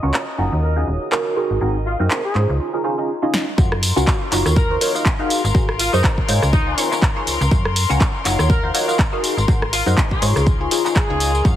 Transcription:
Already playing: D#5 D#6
0.03 C#2 C#4 F4 F#4 A#4 C#5
0.14 clap
0.38 F#1 C#4 D#4 F4 F#4 A#4
0.52 D#2
0.63 A#4
0.76 C#4 D#4 F4 F#4 G#4
0.87 D#1
1.11 C#4 D#4 F4 F#4 A#4, clap
1.36 C4 D#4 F#4 G#4 A#4
1.51 G#1
1.61 G#1 C4 D#4 F#4 G#4 A#4
1.86 F4
1.99 F#2 C4 D#4 F#4 G#4 A#4
2.11 clap
2.25 G#4
2.35 G#2 C#4 D#4 F4 G#4 C5, clap
2.49 C#2
2.73 C#4 D#4 F4 G#4 A#4
2.84 C#4 D#4 F4 G#4 C5
2.98 C#4 D#4 F4 G#4 D#5
3.22 C#4 D#4 F4 G#4 D#5
3.34 snare
3.57 F#2 C#4 F4 F#4 A#4 C#5 C6, kick, tambourine
3.72 cross-stick
3.83 open hi-hat, tambourine
3.96 C#2 C#4 F4 F#4 A#4 C#5, tambourine
4.07 kick, clap, tambourine
4.31 F#1 D#4 F4 F#4 A#4 C#5, clap, open hi-hat, tambourine
4.45 D#2, cross-stick, tambourine
4.56 A#4, kick, tambourine
4.70 D#4 F4 F#4 A#4 C5
4.81 D#4 F4 F#4 A#4 C#5, open hi-hat, tambourine
4.95 D#4 F4 F#4 A#4 F5, tambourine
5.05 kick, clap
5.19 D#4 F#4 G#4 A#4 F5
5.30 open hi-hat, tambourine
5.44 G#1, tambourine
5.54 D#4 F#4 G#4 A#4 C5, kick, tambourine
5.69 cross-stick
5.79 F4, open hi-hat, tambourine
5.93 F#2 D#4 F#4 G#4 A#4 C5, tambourine
6.04 kick, clap
6.18 kick
6.28 G#2 D#4 F4 G#4 C5 C#5, open hi-hat, tambourine
6.42 C#2, cross-stick, tambourine
6.53 D#4, kick, tambourine
6.67 D#4 F4 G#4 C5 C#5
6.77 D#4 F4 G#4 C5 C#5, open hi-hat, tambourine
6.91 D#4 F4 G#4 C5 C#5, clap, tambourine
7.02 kick, clap
7.16 D#4 F4 G#4 C5 C#5
7.27 C#2, open hi-hat, tambourine
7.41 C#2, tambourine
7.51 F#2 C#4 F4 F#4 A#4 C#5, kick, tambourine
7.65 cross-stick
7.76 open hi-hat, tambourine
7.89 C#2 C#4 F4 F#4 A#4 C#5, tambourine
8.01 kick, clap, tambourine
8.25 F#1 D#4 F4 F#4 A#4 C#5, clap, open hi-hat, tambourine
8.39 D#2, cross-stick, tambourine
8.50 A#4, kick, tambourine
8.63 D#4 F4 F#4 A#4 C5
8.74 D#4 F4 F#4 A#4 C#5, open hi-hat, tambourine
8.88 D#4 F4 F#4 A#4 F5, tambourine
8.99 kick, clap
9.12 D#4 F#4 G#4 A#4 F5
9.24 open hi-hat, tambourine
9.37 G#1, tambourine
9.48 D#4 F#4 G#4 A#4 C5, kick, tambourine
9.62 cross-stick
9.73 F4, open hi-hat, tambourine
9.86 F#2 D#4 F#4 G#4 A#4 C5, tambourine
9.97 kick, clap, tambourine
10.11 G#4, kick
10.22 G#2 D#4 F4 G#4 C5 C#5, open hi-hat, tambourine
10.36 C#2, cross-stick, tambourine
10.47 kick, tambourine
10.60 D#4 F4 G#4 C5 C#5
10.71 D#4 F4 G#4 C5 C#5, open hi-hat, tambourine
10.85 D#4 F4 G#4 C5 C#5, clap, tambourine
10.96 G#4, kick, clap
11.09 C#2 D#4 F4 G#4 C5 C#5
11.20 open hi-hat, tambourine
11.35 tambourine
11.45 F#2 C#4 F4 F#4 A#4 C#5 F5 F6, kick, tambourine

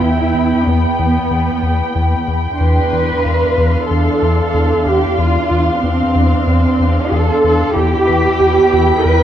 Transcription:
Already playing: E2 B3 G5 B5
0.01 E2 E4
0.34 E2
0.67 E2 B3
0.99 E2
1.31 E2
1.63 E2
1.95 E2
2.28 E2
2.60 E2 D4 B4 C6
2.93 E2
3.25 E2 F5
3.58 E2
3.90 E2 A4
4.22 E2
4.54 E2
4.86 E2 G4
5.18 E2 F4
5.50 E2
5.83 E2 C4
6.15 E2
6.47 E2
6.80 E2
7.12 E2 A4
7.44 E2
7.75 E2 E4 G4 G5 B5 B6
8.07 E2 B4 B6
8.40 E2 G6
8.73 E2
9.05 E2 B4

